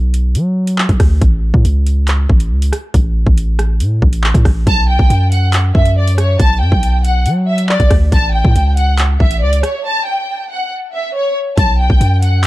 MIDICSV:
0, 0, Header, 1, 4, 480
1, 0, Start_track
1, 0, Tempo, 431655
1, 1351, Time_signature, 4, 2, 24, 8
1, 13864, End_track
2, 0, Start_track
2, 0, Title_t, "Violin section"
2, 0, Program_c, 0, 48
2, 5193, Note_on_c, 0, 81, 101
2, 5407, Note_off_c, 0, 81, 0
2, 5429, Note_on_c, 0, 79, 84
2, 5881, Note_off_c, 0, 79, 0
2, 5909, Note_on_c, 0, 78, 80
2, 6125, Note_off_c, 0, 78, 0
2, 6391, Note_on_c, 0, 76, 81
2, 6606, Note_off_c, 0, 76, 0
2, 6635, Note_on_c, 0, 74, 80
2, 6848, Note_off_c, 0, 74, 0
2, 6875, Note_on_c, 0, 73, 78
2, 7088, Note_off_c, 0, 73, 0
2, 7107, Note_on_c, 0, 81, 102
2, 7324, Note_off_c, 0, 81, 0
2, 7354, Note_on_c, 0, 79, 79
2, 7804, Note_off_c, 0, 79, 0
2, 7835, Note_on_c, 0, 78, 80
2, 8048, Note_off_c, 0, 78, 0
2, 8308, Note_on_c, 0, 76, 80
2, 8524, Note_off_c, 0, 76, 0
2, 8549, Note_on_c, 0, 74, 94
2, 8765, Note_off_c, 0, 74, 0
2, 9032, Note_on_c, 0, 81, 97
2, 9247, Note_off_c, 0, 81, 0
2, 9270, Note_on_c, 0, 79, 73
2, 9722, Note_off_c, 0, 79, 0
2, 9751, Note_on_c, 0, 78, 89
2, 9966, Note_off_c, 0, 78, 0
2, 10228, Note_on_c, 0, 76, 80
2, 10445, Note_off_c, 0, 76, 0
2, 10473, Note_on_c, 0, 74, 89
2, 10687, Note_off_c, 0, 74, 0
2, 10711, Note_on_c, 0, 73, 81
2, 10926, Note_off_c, 0, 73, 0
2, 10954, Note_on_c, 0, 81, 102
2, 11168, Note_off_c, 0, 81, 0
2, 11190, Note_on_c, 0, 79, 79
2, 11642, Note_off_c, 0, 79, 0
2, 11673, Note_on_c, 0, 78, 81
2, 11887, Note_off_c, 0, 78, 0
2, 12152, Note_on_c, 0, 76, 76
2, 12367, Note_off_c, 0, 76, 0
2, 12392, Note_on_c, 0, 73, 87
2, 12607, Note_off_c, 0, 73, 0
2, 12874, Note_on_c, 0, 81, 101
2, 13088, Note_off_c, 0, 81, 0
2, 13109, Note_on_c, 0, 79, 84
2, 13561, Note_off_c, 0, 79, 0
2, 13589, Note_on_c, 0, 78, 81
2, 13805, Note_off_c, 0, 78, 0
2, 13864, End_track
3, 0, Start_track
3, 0, Title_t, "808-style bass"
3, 0, Program_c, 1, 38
3, 0, Note_on_c, 1, 35, 106
3, 391, Note_on_c, 1, 54, 100
3, 408, Note_off_c, 1, 35, 0
3, 961, Note_off_c, 1, 54, 0
3, 991, Note_on_c, 1, 35, 102
3, 1104, Note_off_c, 1, 35, 0
3, 1111, Note_on_c, 1, 38, 108
3, 1341, Note_off_c, 1, 38, 0
3, 1351, Note_on_c, 1, 33, 111
3, 1697, Note_off_c, 1, 33, 0
3, 1711, Note_on_c, 1, 45, 103
3, 1826, Note_off_c, 1, 45, 0
3, 1831, Note_on_c, 1, 37, 102
3, 2522, Note_off_c, 1, 37, 0
3, 2552, Note_on_c, 1, 33, 107
3, 2791, Note_on_c, 1, 37, 101
3, 2807, Note_off_c, 1, 33, 0
3, 3019, Note_off_c, 1, 37, 0
3, 3271, Note_on_c, 1, 33, 109
3, 3617, Note_off_c, 1, 33, 0
3, 3631, Note_on_c, 1, 33, 105
3, 4231, Note_on_c, 1, 45, 98
3, 4248, Note_off_c, 1, 33, 0
3, 4459, Note_off_c, 1, 45, 0
3, 4472, Note_on_c, 1, 33, 107
3, 4818, Note_off_c, 1, 33, 0
3, 4831, Note_on_c, 1, 45, 103
3, 4944, Note_off_c, 1, 45, 0
3, 4951, Note_on_c, 1, 33, 107
3, 5181, Note_off_c, 1, 33, 0
3, 5191, Note_on_c, 1, 35, 113
3, 5537, Note_off_c, 1, 35, 0
3, 5551, Note_on_c, 1, 35, 101
3, 5664, Note_off_c, 1, 35, 0
3, 5671, Note_on_c, 1, 42, 101
3, 6362, Note_off_c, 1, 42, 0
3, 6393, Note_on_c, 1, 42, 106
3, 7083, Note_off_c, 1, 42, 0
3, 7111, Note_on_c, 1, 35, 105
3, 7352, Note_on_c, 1, 42, 97
3, 7368, Note_off_c, 1, 35, 0
3, 7466, Note_off_c, 1, 42, 0
3, 7471, Note_on_c, 1, 35, 108
3, 8072, Note_on_c, 1, 54, 101
3, 8088, Note_off_c, 1, 35, 0
3, 8642, Note_off_c, 1, 54, 0
3, 8672, Note_on_c, 1, 35, 102
3, 8787, Note_off_c, 1, 35, 0
3, 8791, Note_on_c, 1, 38, 110
3, 9022, Note_off_c, 1, 38, 0
3, 9031, Note_on_c, 1, 33, 112
3, 9377, Note_off_c, 1, 33, 0
3, 9391, Note_on_c, 1, 45, 101
3, 9507, Note_off_c, 1, 45, 0
3, 9511, Note_on_c, 1, 37, 105
3, 10203, Note_off_c, 1, 37, 0
3, 10232, Note_on_c, 1, 33, 104
3, 10472, Note_on_c, 1, 37, 99
3, 10488, Note_off_c, 1, 33, 0
3, 10700, Note_off_c, 1, 37, 0
3, 12871, Note_on_c, 1, 35, 109
3, 13217, Note_off_c, 1, 35, 0
3, 13231, Note_on_c, 1, 35, 105
3, 13346, Note_off_c, 1, 35, 0
3, 13352, Note_on_c, 1, 42, 108
3, 13864, Note_off_c, 1, 42, 0
3, 13864, End_track
4, 0, Start_track
4, 0, Title_t, "Drums"
4, 154, Note_on_c, 9, 42, 74
4, 265, Note_off_c, 9, 42, 0
4, 389, Note_on_c, 9, 42, 76
4, 501, Note_off_c, 9, 42, 0
4, 749, Note_on_c, 9, 42, 73
4, 860, Note_off_c, 9, 42, 0
4, 872, Note_on_c, 9, 39, 120
4, 983, Note_off_c, 9, 39, 0
4, 991, Note_on_c, 9, 36, 88
4, 991, Note_on_c, 9, 42, 45
4, 1102, Note_off_c, 9, 36, 0
4, 1102, Note_off_c, 9, 42, 0
4, 1111, Note_on_c, 9, 36, 102
4, 1111, Note_on_c, 9, 37, 99
4, 1111, Note_on_c, 9, 42, 80
4, 1114, Note_on_c, 9, 46, 62
4, 1222, Note_off_c, 9, 36, 0
4, 1222, Note_off_c, 9, 37, 0
4, 1222, Note_off_c, 9, 42, 0
4, 1225, Note_off_c, 9, 46, 0
4, 1351, Note_on_c, 9, 36, 111
4, 1352, Note_on_c, 9, 42, 85
4, 1463, Note_off_c, 9, 36, 0
4, 1463, Note_off_c, 9, 42, 0
4, 1711, Note_on_c, 9, 36, 89
4, 1822, Note_off_c, 9, 36, 0
4, 1834, Note_on_c, 9, 42, 81
4, 1945, Note_off_c, 9, 42, 0
4, 2074, Note_on_c, 9, 42, 72
4, 2185, Note_off_c, 9, 42, 0
4, 2309, Note_on_c, 9, 42, 77
4, 2312, Note_on_c, 9, 39, 108
4, 2420, Note_off_c, 9, 42, 0
4, 2423, Note_off_c, 9, 39, 0
4, 2552, Note_on_c, 9, 36, 102
4, 2663, Note_off_c, 9, 36, 0
4, 2669, Note_on_c, 9, 42, 73
4, 2780, Note_off_c, 9, 42, 0
4, 2915, Note_on_c, 9, 42, 75
4, 3026, Note_off_c, 9, 42, 0
4, 3031, Note_on_c, 9, 37, 98
4, 3034, Note_on_c, 9, 42, 87
4, 3142, Note_off_c, 9, 37, 0
4, 3145, Note_off_c, 9, 42, 0
4, 3271, Note_on_c, 9, 36, 110
4, 3271, Note_on_c, 9, 42, 83
4, 3382, Note_off_c, 9, 36, 0
4, 3382, Note_off_c, 9, 42, 0
4, 3631, Note_on_c, 9, 36, 93
4, 3742, Note_off_c, 9, 36, 0
4, 3753, Note_on_c, 9, 42, 82
4, 3864, Note_off_c, 9, 42, 0
4, 3991, Note_on_c, 9, 37, 101
4, 3994, Note_on_c, 9, 42, 73
4, 4102, Note_off_c, 9, 37, 0
4, 4105, Note_off_c, 9, 42, 0
4, 4229, Note_on_c, 9, 42, 78
4, 4340, Note_off_c, 9, 42, 0
4, 4472, Note_on_c, 9, 36, 98
4, 4583, Note_off_c, 9, 36, 0
4, 4589, Note_on_c, 9, 42, 73
4, 4700, Note_off_c, 9, 42, 0
4, 4712, Note_on_c, 9, 39, 117
4, 4823, Note_off_c, 9, 39, 0
4, 4831, Note_on_c, 9, 36, 90
4, 4835, Note_on_c, 9, 42, 74
4, 4942, Note_off_c, 9, 36, 0
4, 4946, Note_off_c, 9, 42, 0
4, 4951, Note_on_c, 9, 36, 100
4, 4951, Note_on_c, 9, 37, 98
4, 4954, Note_on_c, 9, 46, 60
4, 5062, Note_off_c, 9, 36, 0
4, 5062, Note_off_c, 9, 37, 0
4, 5065, Note_off_c, 9, 46, 0
4, 5191, Note_on_c, 9, 36, 111
4, 5191, Note_on_c, 9, 42, 82
4, 5302, Note_off_c, 9, 36, 0
4, 5303, Note_off_c, 9, 42, 0
4, 5551, Note_on_c, 9, 36, 93
4, 5662, Note_off_c, 9, 36, 0
4, 5674, Note_on_c, 9, 42, 83
4, 5785, Note_off_c, 9, 42, 0
4, 5915, Note_on_c, 9, 42, 72
4, 6026, Note_off_c, 9, 42, 0
4, 6150, Note_on_c, 9, 42, 80
4, 6152, Note_on_c, 9, 39, 109
4, 6261, Note_off_c, 9, 42, 0
4, 6263, Note_off_c, 9, 39, 0
4, 6392, Note_on_c, 9, 36, 99
4, 6504, Note_off_c, 9, 36, 0
4, 6509, Note_on_c, 9, 42, 71
4, 6621, Note_off_c, 9, 42, 0
4, 6756, Note_on_c, 9, 42, 73
4, 6867, Note_off_c, 9, 42, 0
4, 6871, Note_on_c, 9, 37, 96
4, 6875, Note_on_c, 9, 42, 86
4, 6982, Note_off_c, 9, 37, 0
4, 6986, Note_off_c, 9, 42, 0
4, 7111, Note_on_c, 9, 36, 113
4, 7112, Note_on_c, 9, 42, 81
4, 7223, Note_off_c, 9, 36, 0
4, 7223, Note_off_c, 9, 42, 0
4, 7471, Note_on_c, 9, 36, 94
4, 7582, Note_off_c, 9, 36, 0
4, 7594, Note_on_c, 9, 42, 81
4, 7705, Note_off_c, 9, 42, 0
4, 7835, Note_on_c, 9, 42, 70
4, 7946, Note_off_c, 9, 42, 0
4, 8070, Note_on_c, 9, 42, 77
4, 8181, Note_off_c, 9, 42, 0
4, 8429, Note_on_c, 9, 42, 76
4, 8540, Note_off_c, 9, 42, 0
4, 8552, Note_on_c, 9, 39, 119
4, 8663, Note_off_c, 9, 39, 0
4, 8671, Note_on_c, 9, 36, 91
4, 8671, Note_on_c, 9, 42, 45
4, 8782, Note_off_c, 9, 36, 0
4, 8783, Note_off_c, 9, 42, 0
4, 8791, Note_on_c, 9, 36, 101
4, 8791, Note_on_c, 9, 37, 99
4, 8791, Note_on_c, 9, 42, 77
4, 8794, Note_on_c, 9, 46, 60
4, 8902, Note_off_c, 9, 36, 0
4, 8902, Note_off_c, 9, 37, 0
4, 8903, Note_off_c, 9, 42, 0
4, 8906, Note_off_c, 9, 46, 0
4, 9032, Note_on_c, 9, 36, 109
4, 9032, Note_on_c, 9, 42, 83
4, 9143, Note_off_c, 9, 36, 0
4, 9143, Note_off_c, 9, 42, 0
4, 9392, Note_on_c, 9, 36, 92
4, 9503, Note_off_c, 9, 36, 0
4, 9514, Note_on_c, 9, 42, 83
4, 9625, Note_off_c, 9, 42, 0
4, 9754, Note_on_c, 9, 42, 72
4, 9865, Note_off_c, 9, 42, 0
4, 9990, Note_on_c, 9, 42, 77
4, 9992, Note_on_c, 9, 39, 105
4, 10101, Note_off_c, 9, 42, 0
4, 10103, Note_off_c, 9, 39, 0
4, 10233, Note_on_c, 9, 36, 102
4, 10344, Note_off_c, 9, 36, 0
4, 10349, Note_on_c, 9, 42, 73
4, 10460, Note_off_c, 9, 42, 0
4, 10595, Note_on_c, 9, 42, 75
4, 10707, Note_off_c, 9, 42, 0
4, 10711, Note_on_c, 9, 37, 98
4, 10714, Note_on_c, 9, 42, 87
4, 10822, Note_off_c, 9, 37, 0
4, 10825, Note_off_c, 9, 42, 0
4, 12871, Note_on_c, 9, 36, 113
4, 12871, Note_on_c, 9, 42, 82
4, 12982, Note_off_c, 9, 42, 0
4, 12983, Note_off_c, 9, 36, 0
4, 13231, Note_on_c, 9, 36, 88
4, 13342, Note_off_c, 9, 36, 0
4, 13353, Note_on_c, 9, 42, 82
4, 13465, Note_off_c, 9, 42, 0
4, 13594, Note_on_c, 9, 42, 74
4, 13705, Note_off_c, 9, 42, 0
4, 13829, Note_on_c, 9, 42, 80
4, 13864, Note_off_c, 9, 42, 0
4, 13864, End_track
0, 0, End_of_file